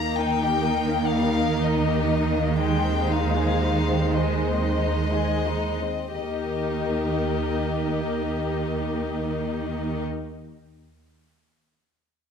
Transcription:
0.00 5.81 D#2 soft
0.00 5.81 D#3 soft
0.00 0.19 A#3 soft
0.00 2.56 A#3 soft
0.00 5.82 D#4 soft
0.00 2.56 A#4 soft
0.00 0.15 A#5 soft
0.17 0.42 D#4 soft
0.17 1.14 G5 medium
0.42 0.66 G4 soft
0.65 0.90 D#4 soft
0.89 1.14 A#3 soft
1.12 1.38 G3 soft
1.12 1.61 F5 medium
1.39 1.63 A#3 soft
1.62 1.87 D#4 soft
1.62 2.59 D#5 medium
1.88 2.11 G4 soft
2.11 2.35 D#4 soft
2.35 2.59 A#3 soft
2.58 2.82 G#3 soft
2.58 5.82 G#3 soft
2.58 5.85 C5 soft
2.58 3.07 G5 medium
2.85 3.10 C4 soft
3.09 3.35 D#4 soft
3.09 4.18 F5 soft
3.36 3.62 G#4 soft
3.63 3.90 D#4 soft
3.89 4.18 C4 soft
4.16 4.48 G#3 soft
4.16 6.13 D#5 soft
4.47 4.79 C4 soft
4.80 5.13 D#4 soft
5.12 5.48 G#4 soft
5.48 5.83 D#4 soft
5.83 6.16 C4 soft
6.14 10.03 D#2 soft
6.14 10.02 D#3 soft
6.14 10.03 A#3 soft
6.14 10.03 D#4 soft
6.14 10.03 G4 soft
6.14 10.03 A#4 soft
6.14 10.01 D#5 soft

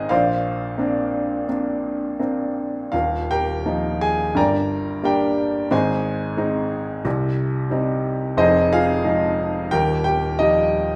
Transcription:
0.00 0.12 G#1 medium
0.00 0.12 G#2 medium
0.00 0.12 G#3 soft
0.00 0.12 C4 soft
0.00 0.12 D#4 medium
0.00 0.13 G#4 medium
0.00 0.11 C5 medium
0.00 0.13 D#5 medium
0.00 0.12 G#5 loud
0.09 2.89 A#1 medium
0.09 2.89 A#2 medium
0.09 1.46 F4 medium
0.09 1.46 C5 medium
0.09 1.45 D5 soft
0.09 1.45 F5 medium
0.78 1.47 A#3 soft
0.78 1.47 C4 soft
0.78 1.47 D4 medium
1.49 2.18 A#3 soft
1.49 2.18 C4 soft
1.49 2.19 D4 soft
2.20 2.91 A#3 soft
2.20 2.91 C4 soft
2.20 2.91 D4 soft
2.92 4.32 D#1 medium
2.92 4.31 D#2 medium
2.92 3.27 F4 soft
2.92 3.27 A#4 soft
2.92 3.30 F5 medium
3.31 3.98 G4 medium
3.31 3.98 A#4 medium
3.31 4.04 G5 medium
3.66 4.34 F3 soft
3.66 4.34 A#3 soft
3.66 4.34 D#4 medium
4.01 4.34 G#4 medium
4.01 4.37 G#5 medium
4.35 5.67 G1 medium
4.35 5.67 G2 medium
4.35 5.01 A#4 medium
4.35 5.01 D5 medium
4.35 5.01 G5 medium
4.35 5.07 A#5 medium
5.03 5.69 G3 soft
5.03 5.69 A#3 soft
5.03 5.70 D4 medium
5.03 5.68 G4 medium
5.03 5.68 A#4 medium
5.03 5.74 G5 medium
5.71 7.01 G#1 medium
5.71 7.01 G#2 medium
5.71 7.02 G#4 medium
5.71 7.01 C5 medium
5.71 7.01 D#5 medium
5.71 7.02 G#5 medium
6.37 7.03 G#3 medium
6.37 7.03 C4 soft
6.37 7.03 D#4 medium
7.05 8.34 C2 medium
7.05 8.34 C3 medium
7.70 8.36 G3 soft
7.70 8.36 C4 soft
7.70 8.36 D#4 medium
8.37 9.68 F1 medium
8.37 9.68 F2 medium
8.37 8.70 D#4 medium
8.37 8.69 G#4 medium
8.37 8.69 C5 medium
8.37 8.73 D#5 medium
8.73 9.69 F4 medium
8.73 9.69 G#4 medium
8.73 9.76 F5 loud
9.04 9.70 F3 medium
9.04 9.70 G#3 soft
9.04 9.70 D#4 medium
9.71 10.96 D#1 medium
9.71 10.96 D#2 medium
9.71 10.03 G4 medium
9.71 10.04 A#4 medium
9.71 10.03 G5 loud
10.04 10.37 G4 medium
10.04 10.40 G5 medium
10.39 10.96 F3 soft
10.39 10.96 G3 soft
10.39 10.96 D#4 medium
10.39 10.96 G4 medium
10.39 10.96 D#5 medium

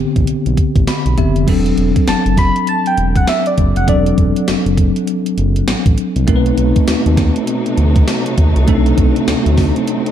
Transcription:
0.00 1.13 D3 medium
0.00 1.14 B3 medium
0.00 1.14 C4 medium
0.00 1.14 G4 medium
0.16 0.26 A1 medium
0.16 kick medium
0.16 closed hi-hat medium
0.27 0.35 B1 soft
0.27 closed hi-hat medium
0.46 0.56 B1 medium
0.46 closed hi-hat medium
0.57 kick medium
0.57 closed hi-hat medium
0.76 0.85 A1 medium
0.76 kick loud
0.76 closed hi-hat soft
0.87 1.16 B5 medium
0.87 snare loud
0.87 closed hi-hat medium
1.06 1.15 B1 medium
1.06 closed hi-hat medium
1.17 1.33 F#1 medium
1.17 1.47 D3 medium
1.17 1.48 B3 soft
1.17 1.46 C4 soft
1.17 1.48 G4 medium
1.17 1.46 E5 medium
1.17 kick medium
1.17 closed hi-hat medium
1.36 1.45 F1 medium
1.36 closed hi-hat medium
1.47 1.72 E1 medium
1.47 3.83 F#3 medium
1.47 3.84 C4 medium
1.47 3.84 D4 medium
1.47 3.84 A4 medium
1.47 kick loud
1.47 closed hi-hat medium
1.47 crash medium
1.66 closed hi-hat medium
1.77 1.93 E1 loud
1.77 closed hi-hat medium
1.96 kick medium
1.96 closed hi-hat medium
2.07 2.15 F#1 soft
2.07 2.40 A5 loud
2.07 snare loud
2.07 closed hi-hat medium
2.26 2.51 F#1 medium
2.26 closed hi-hat medium
2.37 2.70 B5 loud
2.37 kick loud
2.37 snare medium
2.37 closed hi-hat medium
2.56 closed hi-hat medium
2.67 2.87 A5 loud
2.67 closed hi-hat medium
2.86 3.18 G5 medium
2.86 closed hi-hat medium
2.97 3.22 E1 medium
2.97 closed hi-hat medium
3.16 3.30 F#5 medium
3.16 kick loud
3.16 closed hi-hat medium
3.28 3.49 E5 medium
3.28 snare loud
3.28 closed hi-hat medium
3.46 3.76 D5 medium
3.46 closed hi-hat medium
3.58 3.73 F#1 medium
3.58 kick medium
3.58 closed hi-hat medium
3.76 3.86 F1 medium
3.76 3.90 F#5 medium
3.76 closed hi-hat medium
3.87 4.12 E1 loud
3.87 6.23 F#3 medium
3.87 6.24 C4 medium
3.87 6.24 D4 medium
3.87 6.24 A4 medium
3.87 4.48 D5 medium
3.87 kick loud
3.87 closed hi-hat medium
4.06 closed hi-hat medium
4.18 4.33 E1 loud
4.18 kick medium
4.18 closed hi-hat medium
4.36 closed hi-hat medium
4.48 4.55 F#1 soft
4.48 snare loud
4.48 closed hi-hat medium
4.66 4.91 F#1 loud
4.66 closed hi-hat medium
4.77 kick loud
4.77 closed hi-hat medium
4.96 closed hi-hat medium
5.07 closed hi-hat medium
5.26 closed hi-hat medium
5.38 5.62 F#1 loud
5.38 closed hi-hat medium
5.56 closed hi-hat soft
5.68 5.75 A1 medium
5.68 snare loud
5.68 closed hi-hat medium
5.86 5.96 A1 medium
5.86 kick loud
5.86 closed hi-hat medium
5.98 closed hi-hat medium
6.16 6.26 C2 medium
6.16 closed hi-hat medium
6.27 6.52 B1 loud
6.27 8.65 B2 medium
6.27 10.12 C3 medium
6.27 10.12 F#3 medium
6.27 8.63 A3 medium
6.27 10.12 A3 medium
6.27 8.64 C4 medium
6.27 10.12 D#4 medium
6.27 8.64 D#4 medium
6.27 6.36 A#4 medium
6.27 kick loud
6.27 closed hi-hat medium
6.36 8.68 B4 medium
6.46 closed hi-hat medium
6.58 6.73 B1 medium
6.58 closed hi-hat medium
6.76 kick medium
6.76 closed hi-hat medium
6.88 6.95 D#2 medium
6.88 snare loud
6.88 closed hi-hat medium
7.06 7.31 D#2 medium
7.06 closed hi-hat medium
7.17 kick loud
7.17 snare medium
7.17 closed hi-hat medium
7.36 closed hi-hat medium
7.47 closed hi-hat medium
7.66 closed hi-hat medium
7.78 8.02 D2 medium
7.78 closed hi-hat medium
7.96 kick loud
7.96 closed hi-hat soft
8.08 snare loud
8.08 closed hi-hat medium
8.26 closed hi-hat medium
8.38 8.53 D#2 medium
8.38 kick medium
8.38 closed hi-hat medium
8.56 8.66 C2 loud
8.56 closed hi-hat medium
8.67 8.92 B1 loud
8.67 10.12 A3 medium
8.67 10.12 C4 medium
8.67 8.76 D4 medium
8.67 10.12 A4 medium
8.67 kick loud
8.67 closed hi-hat medium
8.75 10.12 D#4 medium
8.86 closed hi-hat medium
8.98 9.13 B1 loud
8.98 kick medium
8.98 closed hi-hat medium
9.16 closed hi-hat medium
9.28 9.35 D2 soft
9.28 snare loud
9.28 closed hi-hat medium
9.46 9.71 D2 medium
9.46 closed hi-hat medium
9.57 kick loud
9.57 snare medium
9.57 open hi-hat medium
9.76 closed hi-hat medium
9.87 closed hi-hat medium
10.06 closed hi-hat medium

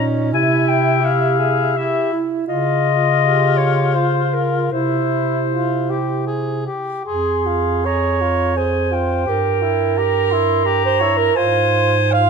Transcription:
0.00 0.35 A#2 soft
0.00 0.32 C#4 soft
0.00 0.35 D#4 soft
0.33 2.21 C3 medium
0.33 1.73 E4 medium
0.33 1.02 E4 medium
0.33 0.70 G#5 medium
0.69 1.07 G5 medium
1.01 1.40 G4 medium
1.05 1.78 F5 medium
1.39 1.78 G#4 soft
1.76 2.23 E4 soft
1.76 2.14 G4 soft
1.76 2.13 E5 medium
2.13 2.47 E4 soft
2.48 4.69 C#3 medium
2.48 2.94 F4 medium
2.48 4.69 F4 medium
2.48 3.59 D#5 medium
3.19 3.97 G4 soft
3.57 3.95 C#5 medium
3.94 4.72 F4 soft
3.94 4.35 C5 medium
4.34 4.74 A#4 soft
4.72 6.68 C3 soft
4.72 5.42 E4 soft
4.72 6.64 E4 soft
4.72 6.68 C5 soft
5.50 5.92 F4 soft
5.90 6.26 G4 soft
6.27 6.66 G#4 soft
6.66 7.04 G4 soft
7.05 9.24 F2 soft
7.05 7.48 G#4 soft
7.05 7.87 G#4 medium
7.05 7.88 C6 soft
7.46 7.86 F4 soft
7.85 8.23 G#4 soft
7.85 8.59 C#5 medium
7.85 8.56 A#5 soft
8.21 8.55 F4 soft
8.56 8.93 G#4 soft
8.56 9.31 C5 soft
8.56 8.95 G#5 soft
8.91 9.25 F4 soft
8.91 9.99 G5 soft
9.26 11.32 G2 soft
9.26 9.64 G4 soft
9.26 10.83 A#4 medium
9.62 10.00 E4 soft
9.97 10.34 G4 soft
9.97 10.33 A#5 soft
10.31 10.64 E4 soft
10.31 10.67 C6 medium
10.65 11.03 G4 soft
10.65 11.38 A#5 medium
10.85 11.02 C5 medium
11.01 11.36 E4 soft
11.01 11.19 C#5 medium
11.17 11.38 A#4 medium
11.36 12.30 G#2 medium
11.36 11.96 F4 soft
11.36 12.15 C5 medium
11.36 12.13 G#5 medium
12.11 12.30 F4 soft
12.11 12.30 F5 medium

